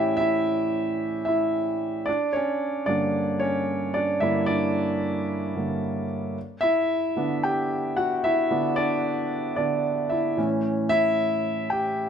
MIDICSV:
0, 0, Header, 1, 2, 480
1, 0, Start_track
1, 0, Tempo, 535236
1, 1863, Time_signature, 4, 2, 24, 8
1, 10845, End_track
2, 0, Start_track
2, 0, Title_t, "Grand piano"
2, 0, Program_c, 0, 0
2, 0, Control_c, 0, 64, 127
2, 0, Note_on_c, 0, 45, 47
2, 0, Note_on_c, 0, 52, 46
2, 0, Note_on_c, 0, 61, 50
2, 0, Note_on_c, 0, 62, 64
2, 0, Note_on_c, 0, 64, 63
2, 0, Note_on_c, 0, 67, 69
2, 0, Note_on_c, 0, 73, 75
2, 0, Note_on_c, 0, 74, 77
2, 0, Note_on_c, 0, 76, 86
2, 0, Note_on_c, 0, 79, 86
2, 137, Note_off_c, 0, 76, 0
2, 150, Note_on_c, 0, 76, 99
2, 168, Note_off_c, 0, 64, 0
2, 182, Note_on_c, 0, 64, 69
2, 384, Note_off_c, 0, 45, 0
2, 387, Note_off_c, 0, 52, 0
2, 389, Note_off_c, 0, 61, 0
2, 1107, Note_off_c, 0, 64, 0
2, 1107, Note_off_c, 0, 76, 0
2, 1121, Note_on_c, 0, 76, 73
2, 1149, Note_on_c, 0, 64, 62
2, 1830, Note_off_c, 0, 64, 0
2, 1843, Note_off_c, 0, 74, 0
2, 1843, Note_on_c, 0, 74, 80
2, 1872, Note_off_c, 0, 62, 0
2, 1872, Note_on_c, 0, 62, 64
2, 1873, Control_c, 0, 64, 0
2, 1874, Note_off_c, 0, 76, 0
2, 1875, Note_off_c, 0, 67, 0
2, 1876, Note_off_c, 0, 79, 0
2, 1881, Note_off_c, 0, 73, 0
2, 2052, Control_c, 0, 64, 127
2, 2087, Note_on_c, 0, 73, 83
2, 2091, Note_off_c, 0, 62, 0
2, 2100, Note_off_c, 0, 74, 0
2, 2117, Note_on_c, 0, 61, 59
2, 2557, Note_off_c, 0, 61, 0
2, 2566, Note_on_c, 0, 74, 84
2, 2577, Note_on_c, 0, 43, 46
2, 2584, Note_on_c, 0, 50, 41
2, 2590, Note_off_c, 0, 73, 0
2, 2590, Note_on_c, 0, 62, 59
2, 2591, Note_on_c, 0, 58, 48
2, 3021, Note_off_c, 0, 74, 0
2, 3033, Note_off_c, 0, 62, 0
2, 3045, Note_on_c, 0, 73, 79
2, 3068, Note_on_c, 0, 61, 60
2, 3500, Note_off_c, 0, 73, 0
2, 3513, Note_off_c, 0, 61, 0
2, 3532, Note_on_c, 0, 74, 77
2, 3554, Note_on_c, 0, 62, 60
2, 3766, Note_off_c, 0, 43, 0
2, 3770, Note_on_c, 0, 76, 86
2, 3772, Note_off_c, 0, 50, 0
2, 3772, Note_off_c, 0, 62, 0
2, 3776, Note_off_c, 0, 58, 0
2, 3780, Note_on_c, 0, 43, 49
2, 3785, Note_off_c, 0, 74, 0
2, 3786, Note_on_c, 0, 50, 45
2, 3790, Note_on_c, 0, 58, 54
2, 3794, Note_on_c, 0, 64, 66
2, 3825, Note_off_c, 0, 76, 0
2, 3847, Note_off_c, 0, 64, 0
2, 4003, Note_on_c, 0, 74, 92
2, 4028, Note_on_c, 0, 62, 59
2, 4101, Note_off_c, 0, 43, 0
2, 4104, Note_off_c, 0, 50, 0
2, 4106, Note_off_c, 0, 58, 0
2, 4985, Note_on_c, 0, 43, 36
2, 4987, Note_on_c, 0, 50, 34
2, 4993, Note_on_c, 0, 58, 45
2, 5201, Note_off_c, 0, 43, 0
2, 5202, Note_off_c, 0, 50, 0
2, 5205, Note_off_c, 0, 58, 0
2, 5418, Note_off_c, 0, 74, 0
2, 5431, Note_off_c, 0, 62, 0
2, 5716, Control_c, 0, 64, 0
2, 5878, Control_c, 0, 64, 127
2, 5925, Note_on_c, 0, 76, 94
2, 5946, Note_on_c, 0, 64, 70
2, 6381, Note_off_c, 0, 76, 0
2, 6392, Note_off_c, 0, 64, 0
2, 6421, Note_on_c, 0, 50, 44
2, 6427, Note_on_c, 0, 59, 42
2, 6432, Note_on_c, 0, 62, 49
2, 6667, Note_on_c, 0, 79, 78
2, 6672, Note_on_c, 0, 67, 68
2, 7107, Note_off_c, 0, 50, 0
2, 7110, Note_off_c, 0, 59, 0
2, 7113, Note_off_c, 0, 62, 0
2, 7115, Note_off_c, 0, 67, 0
2, 7144, Note_on_c, 0, 78, 78
2, 7152, Note_on_c, 0, 66, 64
2, 7161, Note_off_c, 0, 79, 0
2, 7372, Note_off_c, 0, 66, 0
2, 7388, Note_on_c, 0, 76, 88
2, 7392, Note_off_c, 0, 78, 0
2, 7396, Note_on_c, 0, 64, 68
2, 7624, Note_on_c, 0, 50, 51
2, 7630, Note_on_c, 0, 59, 46
2, 7633, Note_on_c, 0, 62, 59
2, 7837, Note_off_c, 0, 64, 0
2, 7856, Note_on_c, 0, 74, 91
2, 7858, Note_off_c, 0, 62, 0
2, 7871, Note_on_c, 0, 62, 61
2, 7881, Note_off_c, 0, 76, 0
2, 8552, Note_off_c, 0, 62, 0
2, 8563, Note_off_c, 0, 74, 0
2, 8571, Note_off_c, 0, 50, 0
2, 8576, Note_off_c, 0, 59, 0
2, 8576, Note_on_c, 0, 74, 70
2, 8585, Note_on_c, 0, 50, 42
2, 8589, Note_on_c, 0, 59, 38
2, 8593, Note_on_c, 0, 62, 54
2, 8801, Note_off_c, 0, 50, 0
2, 8803, Note_off_c, 0, 59, 0
2, 9036, Note_off_c, 0, 62, 0
2, 9053, Note_on_c, 0, 76, 69
2, 9071, Note_on_c, 0, 64, 58
2, 9075, Note_off_c, 0, 74, 0
2, 9299, Note_on_c, 0, 45, 55
2, 9305, Note_on_c, 0, 52, 49
2, 9310, Note_on_c, 0, 61, 60
2, 9318, Control_c, 0, 64, 0
2, 9393, Note_off_c, 0, 76, 0
2, 9403, Note_off_c, 0, 64, 0
2, 9496, Control_c, 0, 64, 127
2, 9770, Note_on_c, 0, 76, 106
2, 9790, Note_on_c, 0, 64, 83
2, 9986, Note_off_c, 0, 45, 0
2, 9989, Note_off_c, 0, 52, 0
2, 9991, Note_off_c, 0, 61, 0
2, 10223, Note_off_c, 0, 76, 0
2, 10234, Note_off_c, 0, 64, 0
2, 10492, Note_on_c, 0, 79, 78
2, 10509, Note_on_c, 0, 67, 66
2, 10845, Note_off_c, 0, 67, 0
2, 10845, Note_off_c, 0, 79, 0
2, 10845, End_track
0, 0, End_of_file